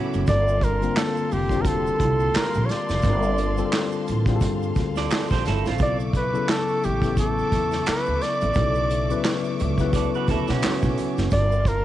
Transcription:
Already playing: tine electric piano C#3 F#3 B3 E4 F#4 A4, clean electric guitar C#4 F#4, string section A4 E5 B5 D6
0.13 upright bass F#1, closed hi-hat, shaker
0.27 upright bass G1, tine electric piano D3 G3 C4 F4 A4, string section A#3 F5 A5 C6, flugelhorn D5, kick, closed hi-hat, shaker
0.48 shaker
0.61 flugelhorn A#4, kick, closed hi-hat, shaker
0.81 tine electric piano D3 G3 A#3 C4 F4, closed hi-hat, shaker
0.97 flugelhorn A4, finger snap, snare, clap, closed hi-hat, shaker
1.17 shaker
1.31 upright bass F1, flugelhorn G4, open hi-hat, shaker
1.50 tine electric piano D3 G3 C4 F4 F#4, kick, closed hi-hat, shaker
1.59 tine electric piano G4, flugelhorn A#4
1.65 flugelhorn A4, kick, closed hi-hat, shaker
1.87 shaker
2.00 upright bass C2, kick, closed hi-hat, shaker
2.20 shaker
2.34 flugelhorn A#4, finger snap, muted upright bass stroke, snare, clap, closed hi-hat, shaker
2.54 upright bass A#1, shaker
2.66 flugelhorn C#5, closed hi-hat
2.70 flugelhorn D5, snare, shaker
2.89 upright bass F1, snare, closed hi-hat, shaker
3.02 upright bass G1, tine electric piano D3 G3 C4 F4 A#4, kick, closed hi-hat, shaker
3.23 shaker
3.38 closed hi-hat, shaker
3.57 tine electric piano D3 G3 C4 F4 A4, closed hi-hat, shaker
3.73 finger snap, snare, clap, closed hi-hat, shaker
3.92 shaker
4.07 upright bass A1, closed hi-hat, shaker
4.26 tine electric piano D3 G3 C4 F4 G#4, kick, shaker
4.36 tine electric piano A4
4.41 upright bass G2, kick, closed hi-hat, shaker
4.62 shaker
4.75 upright bass D2, kick, closed hi-hat, shaker
4.96 clean electric guitar A4 D5, snare, shaker
5.11 finger snap, snare, clap, closed hi-hat, shaker
5.30 upright bass A#1, clean electric guitar G4 C5, kick, snare, shaker
5.45 upright bass G1, clean electric guitar E4 A4, snare, closed hi-hat, shaker
5.65 upright bass A1, clean electric guitar C4 F4, snare, closed hi-hat, shaker
5.78 upright bass B1, tine electric piano C#3 F#3 B3 E4 A4, string section A4 E5 C#6 D6, kick, closed hi-hat, shaker
5.83 flugelhorn D5
6.00 shaker
6.13 flugelhorn B4, kick, closed hi-hat, shaker
6.33 tine electric piano C#3 F#3 B3 E4 A4, shaker
6.49 flugelhorn A4, finger snap, snare, clap, closed hi-hat, shaker
6.68 shaker
6.84 upright bass A1, flugelhorn G4, closed hi-hat, shaker
7.02 tine electric piano C#3 F#3 B3 E4 A4, kick, closed hi-hat, shaker
7.17 flugelhorn A4, kick, closed hi-hat, shaker
7.39 shaker
7.52 upright bass E2, kick, closed hi-hat, shaker
7.71 snare, shaker
7.86 flugelhorn B4, finger snap, muted upright bass stroke, snare, clap, closed hi-hat, shaker
8.06 upright bass D2, shaker
8.21 flugelhorn D5, snare, closed hi-hat, shaker
8.41 upright bass A1, closed hi-hat, shaker
8.54 upright bass B1, tine electric piano C#3 F#3 B3 E4, kick, closed hi-hat, shaker
8.58 tine electric piano A4
8.75 shaker
8.90 closed hi-hat, shaker
9.09 tine electric piano C#3 F#3 B3 E4 B4, closed hi-hat, shaker
9.25 finger snap, snare, clap, closed hi-hat, shaker
9.44 shaker
9.60 upright bass C#2, closed hi-hat, shaker
9.78 tine electric piano C#3 F#3 B3 E4 B4, kick, shaker
9.93 clean electric guitar A4 D5, kick, closed hi-hat, shaker
10.14 clean electric guitar F#4 B4, shaker
10.28 upright bass D2, clean electric guitar E4 A4, kick, closed hi-hat, shaker
10.47 upright bass B2, clean electric guitar C#4 F#4, snare, closed hi-hat, shaker
10.62 finger snap, muted upright bass stroke, snare, clap, closed hi-hat, shaker
10.82 upright bass B1, kick, shaker
10.97 closed hi-hat, shaker
11.17 upright bass F#1, snare, shaker
11.30 upright bass G1, tine electric piano D3 G3 C4 F4 A#4, string section A#4 F5 A5 C6, flugelhorn D5, kick, closed hi-hat, shaker
11.52 shaker
11.65 flugelhorn A#4, kick, closed hi-hat, shaker

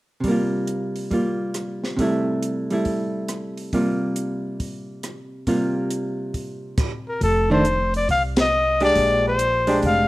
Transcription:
0.20 hollow-body jazz guitar C3 G3, kick, open hi-hat
0.28 hollow-body jazz guitar A#3 F4
0.67 closed hi-hat
0.96 open hi-hat
1.11 hollow-body jazz guitar G3 A#3 F4, kick, open hi-hat
1.54 cross-stick, closed hi-hat
1.84 snare
1.96 hollow-body jazz guitar C3 G3 A3, kick, open hi-hat
2.02 hollow-body jazz guitar E4
2.43 closed hi-hat
2.71 hollow-body jazz guitar G3 A3 E4, open hi-hat
2.85 kick, open hi-hat
3.28 cross-stick, closed hi-hat
3.57 open hi-hat
3.73 hollow-body jazz guitar C3 G3 A#3 F4, kick, open hi-hat
4.16 closed hi-hat
4.60 kick, open hi-hat
5.03 cross-stick, closed hi-hat
5.47 hollow-body jazz guitar C3 G3 A#3 F4, kick, open hi-hat
5.91 closed hi-hat
6.34 kick, open hi-hat
6.78 kick, cross-stick, closed hi-hat, crash
7.08 trumpet A#4
7.21 upright bass F1, trumpet A4, kick, open hi-hat
7.50 hollow-body jazz guitar D#3 A3 D4, trumpet C5
7.65 closed hi-hat
7.94 trumpet D5, open hi-hat
8.09 upright bass C2, trumpet F5, kick, open hi-hat
8.37 trumpet D#5, snare, ride
8.80 hollow-body jazz guitar G#3 D4 G4, open hi-hat
8.85 trumpet D5
8.95 upright bass A#1, kick, open hi-hat
9.28 trumpet C5
9.39 closed hi-hat
9.67 hollow-body jazz guitar G#3 D4 G4, open hi-hat
9.83 upright bass F1, trumpet F5, kick, open hi-hat

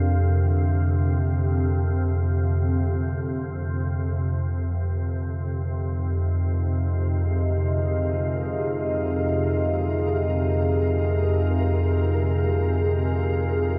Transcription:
Already playing: synth drone F2 C3, analog synth pad D4 A#4 F5
0.45 singing bowl D3
1.31 singing bowl D3
4.69 synth drone F2 C3, singing bowl F3, synth texture A#4, analog synth pad D#5
6.27 analog synth pad G#4

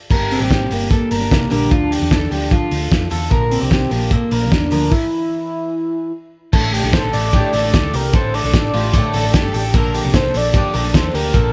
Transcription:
0.10 fingered electric bass G1, steel-string acoustic guitar G2 D3 G3 A#3 D4 G4, clean electric guitar A#4, kick, crash
0.31 soft synth lead C4, open hi-hat
0.40 fingered electric bass A1, steel-string acoustic guitar G3 A#3 D4 G4, clean electric guitar G4
0.51 clean electric guitar G4, kick, snare, closed hi-hat
0.70 fingered electric bass G1, steel-string acoustic guitar G3 A#3 D4 G4, soft synth lead A#3, open hi-hat
0.90 steel-string acoustic guitar G3 A#3 D4 G4, clean electric guitar A4, kick, closed hi-hat
1.11 fingered electric bass G1, clean electric guitar A#4, open hi-hat
1.19 steel-string acoustic guitar G3 A#3 D4 G4
1.31 fingered electric bass C2, soft synth lead A#3, kick, snare, closed hi-hat
1.50 fingered electric bass A#1, steel-string acoustic guitar G2 D3 G3 A#3 D4 G4, soft synth lead D4, clean electric guitar A#4, open hi-hat
1.71 fingered electric bass D2, steel-string acoustic guitar D3 F3 D4 F4 A4, clean electric guitar F4, kick, closed hi-hat
1.91 clean electric guitar G4, open hi-hat
2.01 fingered electric bass E2, steel-string acoustic guitar D4 F4 A4
2.11 clean electric guitar A4, kick, snare, closed hi-hat
2.31 fingered electric bass D2, steel-string acoustic guitar F3 D4 F4 A4, clean electric guitar G4, open hi-hat
2.51 steel-string acoustic guitar F3 D4 F4 A4, clean electric guitar F4, kick, closed hi-hat
2.71 fingered electric bass D2, open hi-hat
2.81 steel-string acoustic guitar D4 F4 A4
2.92 fingered electric bass F2, kick, snare, closed hi-hat
3.10 fingered electric bass E2, steel-string acoustic guitar D3 F3 D4 F4 A4, clean electric guitar A4, open hi-hat
3.30 fingered electric bass A#1, steel-string acoustic guitar A#2 D3 F3 A#3 D4 A#4, clean electric guitar A#4, kick, closed hi-hat
3.51 soft synth lead C4, open hi-hat
3.60 fingered electric bass C2, steel-string acoustic guitar F3 A#3 D4 A#4, clean electric guitar G4
3.71 clean electric guitar G4, kick, snare, closed hi-hat
3.90 fingered electric bass A#1, steel-string acoustic guitar F3 A#3 D4 A#4, soft synth lead A#3, open hi-hat
4.10 steel-string acoustic guitar F3 A#3 D4 A#4, clean electric guitar A4, kick, closed hi-hat
4.31 fingered electric bass A#1, clean electric guitar A#4, open hi-hat
4.41 steel-string acoustic guitar F3 A#3 D4 A#4
4.51 fingered electric bass E2, soft synth lead D4, kick, snare, closed hi-hat
4.71 fingered electric bass D2, steel-string acoustic guitar A#2 D3 F3 A#3 D4 A#4, clean electric guitar A#4, open hi-hat
4.91 soft synth lead E4, kick, crash
6.53 fingered electric bass A1, steel-string acoustic guitar A2 D3 A3 D4 E4 A4, clean electric guitar A4, kick, crash
6.74 clean electric guitar G4, open hi-hat
6.83 fingered electric bass A#1, steel-string acoustic guitar A2 D3 A3 D4 E4 A4
6.93 clean electric guitar A4, soft synth lead C5, kick, snare, hi-hat pedal, ride
7.13 fingered electric bass A1, steel-string acoustic guitar A3 D4 E4 A4, soft synth lead D5, open hi-hat
7.33 steel-string acoustic guitar A2 D3 A3 D4 E4 A4, clean electric guitar G4, kick, hi-hat pedal, ride
7.53 fingered electric bass A1, clean electric guitar A4, open hi-hat
7.63 steel-string acoustic guitar A3 D4 E4 A4
7.73 fingered electric bass D2, clean electric guitar A4, kick, snare, hi-hat pedal, ride
7.83 steel-string acoustic guitar A3 D4 E4 A4
7.94 fingered electric bass C2, clean electric guitar G4, soft synth lead A#4, open hi-hat
8.13 fingered electric bass A1, steel-string acoustic guitar A2 D3 A3 D4 E4 A4, clean electric guitar A4, soft synth lead C5, kick, hi-hat pedal, ride
8.34 clean electric guitar A4, soft synth lead D5, open hi-hat
8.44 fingered electric bass A#1, steel-string acoustic guitar A2 D3 A3 D4 E4 A4
8.53 fingered electric bass A1, kick, snare, hi-hat pedal, ride
8.74 fingered electric bass A1, steel-string acoustic guitar A3 D4 E4 A4, clean electric guitar F4, violin section G4, open hi-hat
8.93 steel-string acoustic guitar A2 D3 A3 D4 E4 A4, clean electric guitar G4, violin section A4, kick, hi-hat pedal, ride
9.12 fingered electric bass A1, violin section A4, clean electric guitar A4, open hi-hat
9.23 steel-string acoustic guitar A3 D4 E4 A4
9.33 fingered electric bass G1, violin section G4, clean electric guitar A4, kick, snare, hi-hat pedal, ride
9.43 steel-string acoustic guitar A3 D4 E4 A4
9.53 fingered electric bass A1, clean electric guitar G4, violin section A4, open hi-hat
9.73 fingered electric bass A#1, steel-string acoustic guitar A#2 D3 F3 A#3 D4, clean electric guitar A4, violin section A#4, kick, hi-hat pedal, ride
9.94 clean electric guitar G4, open hi-hat
10.03 fingered electric bass C2, steel-string acoustic guitar A#2 D3 F3 A#3 D4 A4
10.14 clean electric guitar A4, soft synth lead C5, kick, snare, hi-hat pedal, ride
10.34 fingered electric bass A#1, steel-string acoustic guitar F3 A#3 D4 A4, soft synth lead D5, open hi-hat
10.53 steel-string acoustic guitar A#2 D3 F3 A#3 D4 A4, clean electric guitar G4, kick, hi-hat pedal, ride
10.74 fingered electric bass A#1, clean electric guitar A4, open hi-hat
10.83 steel-string acoustic guitar F3 A#3 D4 A4
10.94 fingered electric bass E2, clean electric guitar A4, soft synth lead C5, kick, snare, hi-hat pedal, ride
11.03 steel-string acoustic guitar F3 A#3 D4 A4
11.14 fingered electric bass D2, clean electric guitar G4, soft synth lead A#4, open hi-hat
11.33 fingered electric bass A#1, steel-string acoustic guitar A#2 D3 F3 A#3 D4 A4, clean electric guitar A4, soft synth lead A#4, kick, hi-hat pedal, ride

